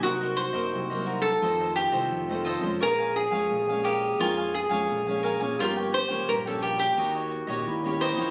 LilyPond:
<<
  \new Staff \with { instrumentName = "Cavaquinho" } { \time 4/4 \key bes \dorian \tempo 4 = 86 <ges' bes' c'' ees''>16 <bes' c'' ees''>16 r16 <bes' c'' ees''>8 <bes' c'' ees''>16 <ges' bes' c'' ees''>8 <f' a' c'' ees''>16 <a' c'' ees''>16 r16 <a' c'' ees''>8 <a' c'' ees''>16 <f' a' c'' ees''>16 <a' c'' ees''>16 | <bes' des'' f'' aes''>16 <des'' f'' aes''>16 r16 <des'' f'' aes''>8 <des'' f'' aes''>16 <bes' des'' f''>8 <bes' des'' f'' aes''>16 <des'' f'' aes''>16 r16 <des'' f'' aes''>8 <des'' f'' aes''>16 <bes' des'' f'' aes''>16 <des'' f'' aes''>16 | <f' bes' des'' g''>16 <bes' des'' g''>16 r16 <bes' des'' g''>8 <bes' des'' g''>16 <f' bes' des'' g''>8 <ees' g' des'' ees''>16 <g' des'' ees''>16 r16 <g' des'' ees''>8 <g' des'' ees''>16 <ees' g' des'' ees''>16 <g' des'' ees''>16 | }
  \new Staff \with { instrumentName = "Cavaquinho" } { \time 4/4 \key bes \dorian ges'8 c''4~ c''16 a'8. g'4 r8 | bes'8 aes'4 g'8 f'8 aes'4 r8 | f'8 c''8 bes'16 a'16 g'16 g'4. r16 c''8 | }
  \new Staff \with { instrumentName = "Clarinet" } { \time 4/4 \key bes \dorian ges'4. r8 f'2 | aes'1 | g'4. r8 ges'4 e'4 | }
  \new Staff \with { instrumentName = "Nylon-string guitar" } { \clef bass \time 4/4 \key bes \dorian << { <ges bes ees'>8. <ges bes ees'>8 <ges bes ees'>8. <ees a c'>8. <ees a c'>8 <ees a c'>8 <f aes des'>16~ | <f aes des'>8. <f aes des'>8 <f aes des'>8. <f aes des'>8 r16 <f aes des'>8 <f aes des'>8 <f bes des'>16~ | <f bes des'>8. <f bes des'>8 <f bes des'>8. <bes des'>8 r16 <bes des' g'>8 <bes des' g'>8 <f c' ees'>16 | } \\ { c4 c4 f,4 c4 | bes,4 f,4 bes,4 f,4 | g,4 g,4 ees4 bes,4 | } >> }
  \new Staff \with { instrumentName = "Fingered electric bass" } { \clef bass \time 4/4 \key bes \dorian c,8. ges,16 c,4 f,8. c,16 f,8. f,16 | bes,,8. f,16 bes,,4 f,8. f,16 bes,,8. bes,,16 | g,,8. des,16 bes,,4 ees,8. bes,,16 ees,8. ees,16 | }
>>